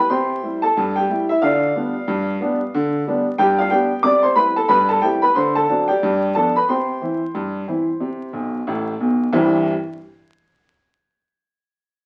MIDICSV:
0, 0, Header, 1, 2, 480
1, 0, Start_track
1, 0, Key_signature, 0, "major"
1, 0, Tempo, 659341
1, 74, Time_signature, 2, 2, 24, 8
1, 8777, End_track
2, 0, Start_track
2, 0, Title_t, "Upright piano"
2, 0, Program_c, 0, 0
2, 0, Note_on_c, 0, 71, 76
2, 0, Note_on_c, 0, 83, 101
2, 70, Note_on_c, 0, 84, 86
2, 75, Note_on_c, 0, 48, 91
2, 76, Note_on_c, 0, 72, 59
2, 77, Note_off_c, 0, 71, 0
2, 77, Note_off_c, 0, 83, 0
2, 82, Note_on_c, 0, 79, 66
2, 278, Note_off_c, 0, 48, 0
2, 315, Note_on_c, 0, 55, 48
2, 316, Note_on_c, 0, 64, 49
2, 377, Note_off_c, 0, 84, 0
2, 430, Note_off_c, 0, 72, 0
2, 433, Note_off_c, 0, 79, 0
2, 447, Note_off_c, 0, 55, 0
2, 447, Note_off_c, 0, 64, 0
2, 453, Note_on_c, 0, 81, 98
2, 464, Note_on_c, 0, 69, 78
2, 562, Note_on_c, 0, 43, 86
2, 681, Note_off_c, 0, 81, 0
2, 682, Note_off_c, 0, 69, 0
2, 696, Note_on_c, 0, 79, 87
2, 709, Note_on_c, 0, 67, 66
2, 762, Note_off_c, 0, 43, 0
2, 796, Note_on_c, 0, 55, 58
2, 801, Note_on_c, 0, 64, 59
2, 887, Note_off_c, 0, 79, 0
2, 925, Note_off_c, 0, 67, 0
2, 927, Note_off_c, 0, 55, 0
2, 930, Note_off_c, 0, 64, 0
2, 941, Note_on_c, 0, 76, 96
2, 951, Note_on_c, 0, 64, 65
2, 1032, Note_on_c, 0, 77, 107
2, 1034, Note_off_c, 0, 64, 0
2, 1035, Note_off_c, 0, 76, 0
2, 1037, Note_on_c, 0, 50, 94
2, 1042, Note_on_c, 0, 74, 84
2, 1044, Note_on_c, 0, 65, 83
2, 1238, Note_off_c, 0, 50, 0
2, 1281, Note_on_c, 0, 55, 57
2, 1282, Note_on_c, 0, 59, 52
2, 1283, Note_on_c, 0, 62, 55
2, 1410, Note_off_c, 0, 55, 0
2, 1410, Note_off_c, 0, 59, 0
2, 1411, Note_off_c, 0, 62, 0
2, 1513, Note_on_c, 0, 43, 98
2, 1715, Note_off_c, 0, 43, 0
2, 1752, Note_on_c, 0, 55, 56
2, 1754, Note_on_c, 0, 59, 67
2, 1758, Note_on_c, 0, 62, 64
2, 1883, Note_off_c, 0, 55, 0
2, 1884, Note_off_c, 0, 59, 0
2, 1887, Note_off_c, 0, 62, 0
2, 1998, Note_on_c, 0, 50, 102
2, 2179, Note_off_c, 0, 77, 0
2, 2197, Note_off_c, 0, 50, 0
2, 2238, Note_on_c, 0, 55, 63
2, 2241, Note_on_c, 0, 59, 57
2, 2242, Note_on_c, 0, 62, 62
2, 2366, Note_off_c, 0, 55, 0
2, 2368, Note_off_c, 0, 59, 0
2, 2369, Note_off_c, 0, 62, 0
2, 2442, Note_off_c, 0, 74, 0
2, 2443, Note_off_c, 0, 65, 0
2, 2463, Note_on_c, 0, 79, 117
2, 2467, Note_on_c, 0, 43, 97
2, 2473, Note_on_c, 0, 67, 101
2, 2601, Note_off_c, 0, 67, 0
2, 2606, Note_off_c, 0, 79, 0
2, 2609, Note_on_c, 0, 77, 109
2, 2619, Note_on_c, 0, 65, 86
2, 2670, Note_off_c, 0, 43, 0
2, 2695, Note_on_c, 0, 79, 108
2, 2701, Note_on_c, 0, 55, 52
2, 2704, Note_off_c, 0, 65, 0
2, 2705, Note_on_c, 0, 59, 59
2, 2706, Note_off_c, 0, 77, 0
2, 2706, Note_on_c, 0, 62, 73
2, 2707, Note_on_c, 0, 67, 81
2, 2833, Note_off_c, 0, 55, 0
2, 2837, Note_off_c, 0, 59, 0
2, 2837, Note_off_c, 0, 62, 0
2, 2927, Note_off_c, 0, 79, 0
2, 2928, Note_off_c, 0, 67, 0
2, 2933, Note_on_c, 0, 86, 121
2, 2940, Note_on_c, 0, 48, 100
2, 2946, Note_on_c, 0, 74, 111
2, 3076, Note_off_c, 0, 74, 0
2, 3078, Note_on_c, 0, 84, 99
2, 3080, Note_off_c, 0, 86, 0
2, 3087, Note_on_c, 0, 72, 77
2, 3145, Note_off_c, 0, 48, 0
2, 3171, Note_on_c, 0, 83, 118
2, 3173, Note_on_c, 0, 55, 59
2, 3177, Note_off_c, 0, 72, 0
2, 3178, Note_on_c, 0, 60, 55
2, 3179, Note_off_c, 0, 84, 0
2, 3182, Note_on_c, 0, 64, 58
2, 3183, Note_on_c, 0, 71, 82
2, 3308, Note_off_c, 0, 55, 0
2, 3311, Note_off_c, 0, 60, 0
2, 3314, Note_off_c, 0, 64, 0
2, 3314, Note_off_c, 0, 71, 0
2, 3319, Note_off_c, 0, 83, 0
2, 3323, Note_on_c, 0, 81, 108
2, 3328, Note_on_c, 0, 69, 86
2, 3410, Note_on_c, 0, 83, 127
2, 3415, Note_on_c, 0, 43, 102
2, 3417, Note_off_c, 0, 69, 0
2, 3421, Note_off_c, 0, 81, 0
2, 3421, Note_on_c, 0, 71, 110
2, 3553, Note_off_c, 0, 71, 0
2, 3558, Note_off_c, 0, 83, 0
2, 3558, Note_on_c, 0, 81, 109
2, 3567, Note_on_c, 0, 69, 86
2, 3621, Note_off_c, 0, 43, 0
2, 3652, Note_on_c, 0, 79, 108
2, 3654, Note_on_c, 0, 55, 62
2, 3657, Note_off_c, 0, 69, 0
2, 3659, Note_off_c, 0, 81, 0
2, 3660, Note_on_c, 0, 60, 53
2, 3660, Note_on_c, 0, 67, 76
2, 3662, Note_on_c, 0, 64, 59
2, 3788, Note_off_c, 0, 55, 0
2, 3792, Note_off_c, 0, 60, 0
2, 3792, Note_off_c, 0, 67, 0
2, 3794, Note_off_c, 0, 64, 0
2, 3799, Note_off_c, 0, 79, 0
2, 3800, Note_on_c, 0, 83, 110
2, 3809, Note_on_c, 0, 71, 91
2, 3895, Note_on_c, 0, 84, 96
2, 3898, Note_off_c, 0, 71, 0
2, 3900, Note_off_c, 0, 83, 0
2, 3900, Note_on_c, 0, 50, 93
2, 3905, Note_on_c, 0, 72, 84
2, 4035, Note_off_c, 0, 72, 0
2, 4040, Note_off_c, 0, 84, 0
2, 4043, Note_on_c, 0, 81, 110
2, 4047, Note_on_c, 0, 69, 79
2, 4105, Note_off_c, 0, 50, 0
2, 4141, Note_on_c, 0, 54, 59
2, 4144, Note_on_c, 0, 60, 50
2, 4147, Note_on_c, 0, 62, 58
2, 4235, Note_off_c, 0, 81, 0
2, 4269, Note_off_c, 0, 69, 0
2, 4273, Note_off_c, 0, 54, 0
2, 4275, Note_off_c, 0, 60, 0
2, 4278, Note_off_c, 0, 62, 0
2, 4279, Note_on_c, 0, 79, 92
2, 4286, Note_on_c, 0, 67, 76
2, 4287, Note_on_c, 0, 74, 80
2, 4389, Note_on_c, 0, 43, 98
2, 4591, Note_off_c, 0, 43, 0
2, 4600, Note_off_c, 0, 67, 0
2, 4601, Note_off_c, 0, 74, 0
2, 4603, Note_off_c, 0, 79, 0
2, 4621, Note_on_c, 0, 81, 96
2, 4626, Note_on_c, 0, 53, 51
2, 4630, Note_on_c, 0, 69, 76
2, 4631, Note_on_c, 0, 59, 46
2, 4635, Note_on_c, 0, 62, 54
2, 4758, Note_off_c, 0, 53, 0
2, 4759, Note_off_c, 0, 69, 0
2, 4761, Note_off_c, 0, 59, 0
2, 4764, Note_off_c, 0, 62, 0
2, 4764, Note_off_c, 0, 81, 0
2, 4775, Note_on_c, 0, 83, 97
2, 4782, Note_on_c, 0, 71, 65
2, 4866, Note_off_c, 0, 71, 0
2, 4868, Note_on_c, 0, 84, 82
2, 4869, Note_off_c, 0, 83, 0
2, 4874, Note_on_c, 0, 48, 75
2, 4879, Note_on_c, 0, 72, 64
2, 4879, Note_on_c, 0, 79, 64
2, 5075, Note_off_c, 0, 48, 0
2, 5106, Note_on_c, 0, 52, 42
2, 5112, Note_on_c, 0, 60, 43
2, 5116, Note_on_c, 0, 64, 43
2, 5239, Note_off_c, 0, 52, 0
2, 5243, Note_off_c, 0, 60, 0
2, 5246, Note_off_c, 0, 64, 0
2, 5348, Note_on_c, 0, 43, 76
2, 5553, Note_off_c, 0, 43, 0
2, 5589, Note_on_c, 0, 52, 44
2, 5593, Note_on_c, 0, 64, 49
2, 5595, Note_on_c, 0, 60, 43
2, 5722, Note_off_c, 0, 52, 0
2, 5725, Note_off_c, 0, 64, 0
2, 5726, Note_off_c, 0, 60, 0
2, 5827, Note_on_c, 0, 48, 73
2, 6034, Note_off_c, 0, 48, 0
2, 6064, Note_on_c, 0, 47, 66
2, 6066, Note_on_c, 0, 35, 63
2, 6247, Note_off_c, 0, 47, 0
2, 6249, Note_off_c, 0, 35, 0
2, 6286, Note_off_c, 0, 84, 0
2, 6291, Note_off_c, 0, 72, 0
2, 6291, Note_off_c, 0, 79, 0
2, 6312, Note_on_c, 0, 33, 81
2, 6313, Note_on_c, 0, 45, 75
2, 6493, Note_off_c, 0, 33, 0
2, 6494, Note_off_c, 0, 45, 0
2, 6553, Note_on_c, 0, 47, 62
2, 6554, Note_on_c, 0, 35, 68
2, 6734, Note_off_c, 0, 47, 0
2, 6735, Note_off_c, 0, 35, 0
2, 6789, Note_on_c, 0, 36, 104
2, 6792, Note_on_c, 0, 43, 84
2, 6792, Note_on_c, 0, 52, 84
2, 6793, Note_on_c, 0, 55, 83
2, 6794, Note_on_c, 0, 60, 84
2, 6795, Note_on_c, 0, 64, 83
2, 7068, Note_off_c, 0, 36, 0
2, 7069, Note_off_c, 0, 43, 0
2, 7069, Note_off_c, 0, 52, 0
2, 7070, Note_off_c, 0, 55, 0
2, 7070, Note_off_c, 0, 60, 0
2, 7071, Note_off_c, 0, 64, 0
2, 8777, End_track
0, 0, End_of_file